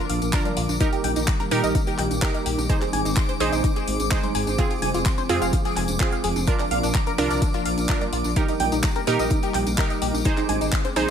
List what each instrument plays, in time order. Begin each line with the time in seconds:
Already playing: analog synth pad D3 F3 A#3, synth pluck D4 F4 A#4, synth texture D6
0.10 detuned saw bass A#1, synth arpeggio sound F5, open hi-hat
0.22 detuned saw bass A#1, closed hi-hat, tambourine, high conga
0.33 synth pluck D4 F4 A#4, synth arpeggio sound A#5, kick, clap, closed hi-hat, tambourine
0.45 synth arpeggio sound D5, closed hi-hat, tambourine, low conga
0.57 detuned saw bass A#1, synth arpeggio sound F4, open hi-hat
0.69 detuned saw bass A#1, tambourine, high conga
0.80 analog synth pad D#3 G3 A#3, synth arpeggio sound D#4, synth pluck D#4 G4 A#4, kick, closed hi-hat, tambourine
0.93 synth arpeggio sound G4, closed hi-hat, tambourine
1.04 detuned saw bass A#1, synth arpeggio sound G5, open hi-hat, high conga, low conga
1.16 detuned saw bass A#1, synth arpeggio sound D#4, closed hi-hat, tambourine
1.27 synth arpeggio sound A#5, kick, clap, closed hi-hat, tambourine
1.40 synth arpeggio sound A#4, closed hi-hat, tambourine, high conga
1.51 detuned saw bass A#2, synth arpeggio sound D#4, synth pluck D#4 G4 A#4, open hi-hat
1.64 detuned saw bass A#1, synth arpeggio sound D#5, closed hi-hat, tambourine
1.75 synth arpeggio sound D#4, kick, closed hi-hat, tambourine, high conga
1.87 synth arpeggio sound G4, closed hi-hat, tambourine
1.98 detuned saw bass A#1, synth arpeggio sound G5, clap, open hi-hat
2.11 detuned saw bass A#1, closed hi-hat, tambourine, high conga
2.22 synth pluck D#4 G4 A#4, synth arpeggio sound A#5, kick, clap, closed hi-hat
2.34 synth arpeggio sound D#5, closed hi-hat, tambourine
2.46 detuned saw bass A#1, synth arpeggio sound G4, open hi-hat
2.58 detuned saw bass A#1, tambourine, high conga
2.69 analog synth pad G#3 C4, synth arpeggio sound D#4, synth pluck D#4 G#4 C5, kick, closed hi-hat, tambourine
2.81 synth arpeggio sound G#4, clap, closed hi-hat, tambourine
2.93 detuned saw bass G#1, synth arpeggio sound G#5, open hi-hat, high conga
3.05 detuned saw bass G#1, synth arpeggio sound D#4, closed hi-hat, tambourine
3.16 synth arpeggio sound C6, kick, clap, closed hi-hat
3.29 synth arpeggio sound C5, closed hi-hat, tambourine, high conga
3.40 detuned saw bass A#1, synth arpeggio sound D#4, synth pluck D#4 G#4 C5, open hi-hat
3.52 detuned saw bass A#1, synth arpeggio sound D#5, closed hi-hat, tambourine
3.64 synth arpeggio sound D#4, kick, closed hi-hat, tambourine, high conga
3.76 synth arpeggio sound G#4, closed hi-hat, tambourine
3.88 detuned saw bass G#1, open hi-hat
4.00 detuned saw bass G#1, closed hi-hat, tambourine, high conga
4.11 synth pluck D#4 G#4 C5, synth arpeggio sound C5, kick, clap, closed hi-hat
4.23 synth arpeggio sound C5, closed hi-hat, tambourine, low conga
4.35 detuned saw bass G#1, synth arpeggio sound G#5, open hi-hat
4.47 detuned saw bass G#1, tambourine, high conga
4.58 analog synth pad F3, synth pluck C4 F4 G#4, synth arpeggio sound F4, kick, closed hi-hat, tambourine
4.70 synth arpeggio sound F4, closed hi-hat, tambourine
4.82 detuned saw bass F1, synth arpeggio sound G#5, open hi-hat, high conga, low conga
4.94 detuned saw bass F1, synth arpeggio sound F4, closed hi-hat, tambourine
5.06 synth arpeggio sound C6, kick, clap, closed hi-hat, tambourine
5.18 synth arpeggio sound C5, closed hi-hat, tambourine, high conga
5.29 detuned saw bass F2, synth pluck C4 F4 G#4, synth arpeggio sound F4, open hi-hat
5.42 detuned saw bass F1, synth arpeggio sound F5, closed hi-hat, tambourine
5.53 synth arpeggio sound F4, kick, closed hi-hat, tambourine, high conga
5.65 synth arpeggio sound G#4, closed hi-hat, tambourine
5.76 detuned saw bass F1, synth arpeggio sound G#5, clap, open hi-hat
5.88 detuned saw bass F1, closed hi-hat, tambourine, high conga
6.00 synth pluck C4 F4 G#4, synth arpeggio sound C6, kick, clap, closed hi-hat
6.12 synth arpeggio sound F5, closed hi-hat, tambourine
6.24 detuned saw bass F1, synth arpeggio sound G#4, open hi-hat
6.36 detuned saw bass F1, tambourine, high conga
6.47 analog synth pad F3 A#3 D4, synth pluck D4 F4 A#4, synth arpeggio sound D4, kick, closed hi-hat, tambourine
6.59 synth arpeggio sound D4, clap, closed hi-hat, tambourine
6.71 detuned saw bass A#1, synth arpeggio sound F5, open hi-hat, high conga
6.83 detuned saw bass A#1, synth arpeggio sound D4, closed hi-hat, tambourine
6.94 synth arpeggio sound A#5, kick, clap, closed hi-hat
7.06 synth arpeggio sound A#4, closed hi-hat, tambourine, high conga
7.18 detuned saw bass C2, synth arpeggio sound D4, synth pluck D4 F4 A#4, open hi-hat
7.30 detuned saw bass C2, synth arpeggio sound D5, closed hi-hat, tambourine
7.42 synth arpeggio sound D4, kick, closed hi-hat, tambourine, high conga
7.54 synth arpeggio sound F4, closed hi-hat, tambourine
7.65 detuned saw bass A#1, synth arpeggio sound F5, open hi-hat
7.78 detuned saw bass A#1, closed hi-hat, tambourine, high conga
7.89 synth pluck D4 F4 A#4, synth arpeggio sound A#5, kick, clap, closed hi-hat
8.01 synth arpeggio sound D5, closed hi-hat, tambourine, low conga
8.13 detuned saw bass A#1, synth arpeggio sound F4, open hi-hat
8.24 detuned saw bass A#1, tambourine, high conga
8.36 analog synth pad G3 A#3 D#4, synth pluck D#4 G4 A#4, synth arpeggio sound D#4, kick, closed hi-hat, tambourine
8.48 synth arpeggio sound D#4, closed hi-hat, tambourine
8.60 detuned saw bass A#1, synth arpeggio sound G5, open hi-hat, high conga, low conga
8.72 detuned saw bass A#1, synth arpeggio sound D#4, closed hi-hat, tambourine
8.83 synth arpeggio sound A#5, kick, clap, closed hi-hat, tambourine
8.96 synth arpeggio sound A#4, closed hi-hat, tambourine, high conga
9.07 detuned saw bass A#2, synth pluck D#4 G4 A#4, synth arpeggio sound D#4, open hi-hat
9.19 detuned saw bass A#1, synth arpeggio sound D#5, closed hi-hat, tambourine
9.30 synth arpeggio sound D#4, kick, closed hi-hat, tambourine, high conga
9.43 synth arpeggio sound G4, closed hi-hat, tambourine
9.54 detuned saw bass A#1, synth arpeggio sound G5, clap, open hi-hat
9.67 detuned saw bass A#1, closed hi-hat, tambourine, high conga
9.78 synth pluck D#4 G4 A#4, synth arpeggio sound A#5, kick, clap, closed hi-hat
9.90 synth arpeggio sound D#5, closed hi-hat, tambourine
10.02 detuned saw bass A#1, synth arpeggio sound G4, open hi-hat
10.14 detuned saw bass A#1, tambourine, high conga
10.25 analog synth pad G#3 C4, synth arpeggio sound D#4, synth pluck D#4 G#4 C5, kick, closed hi-hat, tambourine
10.37 synth arpeggio sound D#4, clap, closed hi-hat, tambourine
10.49 detuned saw bass G#1, synth arpeggio sound G#5, open hi-hat, high conga
10.61 detuned saw bass G#1, synth arpeggio sound D#4, closed hi-hat, tambourine
10.72 synth arpeggio sound C6, kick, clap, closed hi-hat
10.85 synth arpeggio sound C5, closed hi-hat, tambourine, high conga
10.96 detuned saw bass A#1, synth arpeggio sound D#4, synth pluck D#4 G#4 C5, open hi-hat